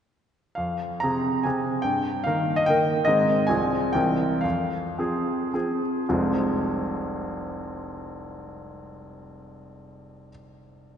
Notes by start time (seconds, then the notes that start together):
0.55 F2 F5
1.00 C3 C4 G#4 A#5
1.43 C3 C4 G#4 G#5
1.82 G2 G5
2.24 D#3 A#3 A#4 F5
2.56 D#5
2.66 D#3 A#3 A#4 G5
3.05 G#2 D#3 C4 G#4 D#5
3.47 C2 F3 C4 G#4 G#5
3.93 C2 E3 C4 A#4 G5
4.41 F2 F5
4.99 F3 C4 G#4
5.54 F3 C4 G#4
6.09 F1 C2 F3 G#3 C4 F4